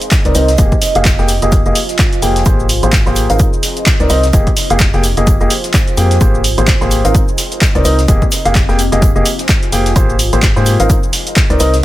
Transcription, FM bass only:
0.25 C2
0.35 C2
0.58 F1
0.95 F1
1.19 F1
1.42 F1
1.66 F1
2.22 F1
2.46 G#1
2.83 G#1
3.06 G#1
3.30 G#1
4.00 C2
4.10 C2
4.33 F1
4.70 F1
4.94 F1
5.17 F1
5.41 F1
5.97 F2
6.21 G#1
6.58 G#1
6.81 G#1
7.05 G#1
7.75 C2
7.85 C2
8.08 F1
8.45 F1
8.69 F1
8.92 F1
9.16 F1
9.72 F1
9.96 G#1
10.33 G#1
10.56 G#2
10.80 G#1
11.50 C2
11.60 C2

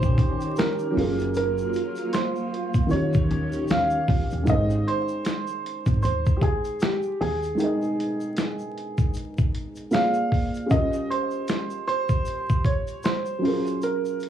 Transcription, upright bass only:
Already playing: A#1
0.97 F#1
2.75 D#2
2.92 D#3
3.31 D#2
3.71 D#2
4.09 C#2
4.33 D#2
4.48 G#1
5.87 G#1
6.05 D#2
7.21 D#2

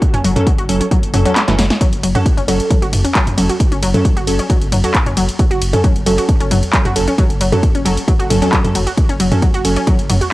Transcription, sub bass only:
0.14 F#1
0.24 F#1
0.58 F#1
0.69 F#1
1.03 F#1
1.14 F#1
1.48 F#1
1.58 F#1
1.93 F#1
2.03 F#1
2.37 F#1
2.48 F#1
2.82 F#1
2.93 F#1
3.27 F#1
3.38 F#1
3.72 F#1
3.82 F#1
4.17 F#1
4.27 F#1
4.61 F#1
4.72 F#1
5.06 F#1
5.17 F#1
5.51 F#1
5.62 F#1
5.96 F#1
6.06 F#1
6.41 F#1
6.51 F#1
6.85 F#1
6.96 F#1
7.30 F#1
7.41 F#1
7.75 F#1
7.86 F#1
8.20 F#1
8.30 F#1
8.64 F#1
8.75 F#1
9.09 F#1
9.20 F#1
9.54 F#1
9.65 F#1
9.99 F#1
10.09 F#1

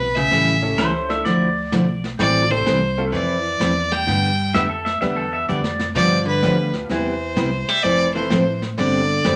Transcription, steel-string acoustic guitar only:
0.31 E3 G3 C#4 E4 A4
0.78 E3 G3 C#4 E4 A4
1.26 D3 F3 A3 E4
1.72 D3 F3 A3 E4
2.19 E3 G3 C4 E4 A4
2.66 E3 G3 C4 E4 A4
3.13 F3 C4 E4 A4
3.60 F3 C4 E4 A4
4.07 D3 G3 B3 D4 G4
4.54 D3 G3 B3 D4 G4
5.01 D3 G3 B3 D4 G4
5.48 D3 G3 B3 D4 G4
5.96 D3 F3 B3 D4 G4
6.43 D3 F3 B3 D4 G4
6.89 C3 G3 B3 E4 G4
7.36 C3 G3 B3 E4 G4
7.84 F3 C4 E4 A4
8.30 F3 C4 E4 A4
8.77 C3 G3 C4 D4 G4
9.24 C3 G3 C4 D4 G4

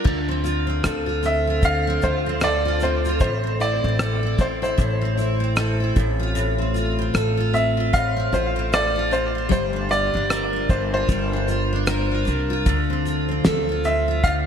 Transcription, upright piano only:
1.26 E5
1.65 F5
2.03 C5
2.44 D5
2.83 C5
3.21 C5
3.61 D5
4.41 C5
4.63 C5
7.54 E5
7.94 F5
8.34 C5
8.74 D5
9.13 C5
9.52 C5
9.91 D5
10.70 C5
10.94 C5
13.85 E5
14.24 F5

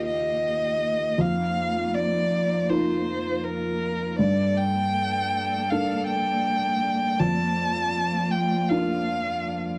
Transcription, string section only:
Already playing: A#3 G4 F5
1.19 D#4 F4
4.19 A#3 A4 D5
7.21 F4

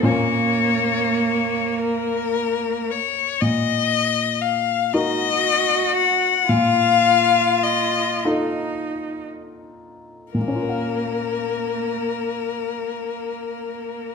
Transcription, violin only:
0.05 C#5
1.80 A#4
2.91 C#5
3.41 D#5
4.42 F5
4.93 D#5
5.96 F#5
6.49 F5
7.63 D#5
10.34 A#4

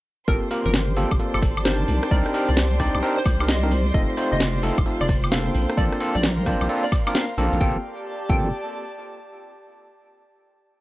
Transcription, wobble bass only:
0.28 G1
0.66 G1
1.12 G1
1.34 G1
1.88 C2
2.11 C2
2.49 C2
2.95 C2
3.26 C2
3.94 F1
4.32 F1
4.78 F1
5.01 F1
5.55 A#1
5.78 A#1
6.15 A#1
6.61 A#1
7.38 A#1
7.53 A#1
7.61 G1
8.30 G1

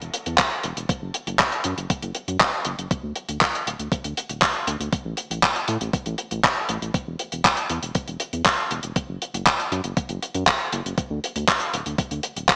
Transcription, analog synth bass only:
0.01 E1
0.26 E2
0.64 E1
0.77 E1
1.02 F#1
1.27 F#1
1.65 F#2
1.77 F#1
2.03 F#1
2.28 F#2
2.65 F#1
2.78 F#1
3.03 D2
3.29 D2
3.67 D1
3.79 D2
4.04 D2
4.29 D1
4.67 D2
4.80 D2
5.05 A1
5.31 A1
5.68 A2
5.81 A1
6.06 A1
6.31 A1
6.69 A1
6.82 A1
7.07 E1
7.32 E1
7.70 E2
7.83 E1
8.08 E1
8.33 E2
8.71 E1
8.84 E1
9.09 F#1
9.34 F#1
9.72 F#2
9.84 F#1
10.09 F#1
10.35 F#2
10.73 F#1
10.85 F#1
11.10 D2
11.36 D2
11.73 D1
11.86 D2
12.11 D2
12.36 D1

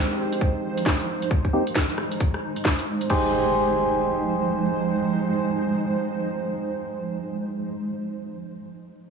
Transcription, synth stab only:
Already playing: G#3 C4 D#4 G4
1.53 A#3 C4 D#4 G4
3.10 D#4 G4 G#4 C5

